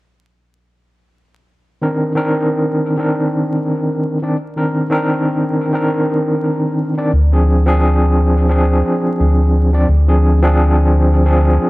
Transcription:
1.82 2.11 D#3 medium
1.82 2.11 C4 medium
1.82 2.12 D4 medium
1.82 2.12 A#4 medium
2.15 2.95 D#3 medium
2.15 2.96 C4 medium
2.15 2.96 D4 medium
2.15 2.96 A#4 medium
2.97 4.17 D#3 medium
2.97 4.18 C4 medium
2.97 4.18 D4 medium
2.97 4.19 A#4 medium
4.22 4.36 D#3 medium
4.22 4.36 C4 medium
4.22 4.36 D4 medium
4.22 4.36 D5 medium
4.56 4.86 D#3 medium
4.56 4.87 C4 medium
4.56 4.87 D4 medium
4.56 4.87 A#4 medium
4.90 5.70 D#3 medium
4.90 5.71 C4 medium
4.90 5.71 D4 medium
4.90 5.72 A#4 loud
5.73 6.93 D#3 medium
5.73 6.93 C4 medium
5.73 6.94 D4 medium
5.73 6.94 A#4 medium
6.97 7.10 D#3 medium
6.97 7.11 C4 medium
6.97 7.11 D4 medium
6.97 7.11 D5 medium
7.13 8.83 D2 loud
7.32 7.62 F3 medium
7.32 7.62 C4 medium
7.32 7.63 D4 medium
7.32 7.63 G#4 medium
7.66 8.46 F3 medium
7.66 8.47 C4 medium
7.66 8.47 D4 medium
7.66 8.48 G#4 loud
8.49 9.69 F3 medium
8.49 9.69 C4 medium
8.49 9.70 D4 medium
8.49 9.70 G#4 medium
9.20 9.86 D2 medium
9.73 9.87 F3 medium
9.73 9.87 C4 medium
9.73 9.87 D4 medium
9.73 9.88 D5 medium
9.88 11.58 D2 medium
10.08 10.38 F3 medium
10.08 10.38 C4 medium
10.08 10.38 D4 medium
10.08 10.39 G#4 medium
10.42 11.23 F3 medium
10.42 11.23 C4 medium
10.42 11.23 D4 medium
10.42 11.24 G#4 loud
11.26 11.70 F3 medium
11.26 11.70 C4 medium
11.26 11.70 D4 medium
11.26 11.70 G#4 medium

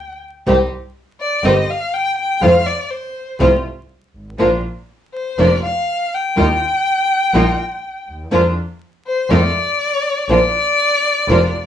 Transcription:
0.00 0.17 G5 medium
0.47 0.68 C2 medium
0.47 0.55 C3 medium
0.47 0.55 D#3 medium
0.47 0.56 G3 medium
0.47 0.67 C4 medium
0.47 0.56 C4 medium
0.47 0.67 D#4 medium
0.47 0.67 G4 medium
0.47 0.56 G4 medium
1.21 1.47 D5 medium
1.43 1.64 G1 loud
1.43 1.53 C3 medium
1.43 1.53 D#3 medium
1.43 1.53 G3 medium
1.43 1.64 C4 medium
1.43 1.53 C4 medium
1.43 1.64 D#4 medium
1.43 1.64 G4 medium
1.43 1.53 G4 medium
1.43 1.72 D#5 medium
1.70 1.95 F5 medium
1.94 2.17 G5 medium
2.18 2.44 G5 medium
2.41 2.62 F2 medium
2.41 2.51 C3 medium
2.41 2.51 F3 medium
2.41 2.62 A3 medium
2.41 2.51 A3 medium
2.41 2.62 C4 medium
2.41 2.51 C4 medium
2.41 2.62 F4 medium
2.41 2.51 F4 medium
2.41 2.68 F5 loud
2.67 2.92 D5 medium
2.90 3.39 C5 medium
3.39 3.60 C2 medium
3.39 3.49 C3 medium
3.39 3.49 F3 medium
3.39 3.60 A3 medium
3.39 3.49 A3 medium
3.39 3.60 C4 medium
3.39 3.49 C4 medium
3.39 3.60 F4 medium
3.39 3.49 F4 medium
4.14 4.39 G#1 soft
4.38 4.60 A#1 medium
4.38 4.47 F3 medium
4.38 4.59 A#3 medium
4.38 4.48 A#3 medium
4.38 4.60 D4 medium
4.38 4.48 D4 medium
4.38 4.60 F4 medium
4.38 4.48 F4 medium
5.14 5.41 C5 medium
5.38 5.59 F1 medium
5.38 5.47 F3 medium
5.38 5.47 A#3 medium
5.38 5.59 A#3 medium
5.38 5.48 D4 medium
5.38 5.60 D4 medium
5.38 5.48 F4 medium
5.38 5.60 F4 medium
5.38 5.62 D5 medium
5.63 6.15 F5 medium
6.14 8.08 G5 medium
6.36 6.57 D#2 medium
6.36 6.45 D#3 medium
6.36 6.57 A#3 medium
6.36 6.46 A#3 medium
6.36 6.57 D#4 medium
6.36 6.46 D#4 medium
6.36 6.57 F4 medium
6.36 6.46 F4 loud
7.33 7.54 A#1 loud
7.33 7.43 D#3 medium
7.33 7.55 A#3 medium
7.33 7.43 A#3 medium
7.33 7.55 D#4 medium
7.33 7.43 D#4 medium
7.33 7.55 F4 medium
7.33 7.43 F4 medium
8.08 8.30 D#2 soft
8.31 8.52 F2 medium
8.31 8.40 F3 medium
8.31 8.40 A#3 medium
8.31 8.52 A#3 medium
8.31 8.52 D4 medium
8.31 8.41 D4 medium
8.31 8.53 F4 medium
8.31 8.41 F4 loud
9.07 9.32 C5 medium
9.29 9.50 F2 loud
9.29 9.39 C3 medium
9.29 9.39 D#3 medium
9.29 9.51 A3 medium
9.29 9.39 A3 loud
9.29 9.39 C4 medium
9.29 9.51 D#4 medium
9.29 9.51 F4 medium
9.29 9.39 F4 medium
9.29 10.29 D5 medium
10.29 10.50 A#1 medium
10.29 10.38 F3 medium
10.29 10.38 A#3 medium
10.29 10.50 A#3 medium
10.29 10.50 D4 medium
10.29 10.38 D4 medium
10.29 10.50 F4 medium
10.29 10.39 F4 medium
10.29 11.66 D5 loud
11.28 11.50 F1 loud
11.28 11.38 F3 medium
11.28 11.38 A#3 medium
11.28 11.51 A#3 medium
11.28 11.38 D4 medium
11.28 11.51 D4 medium
11.28 11.39 F4 medium
11.28 11.51 F4 medium

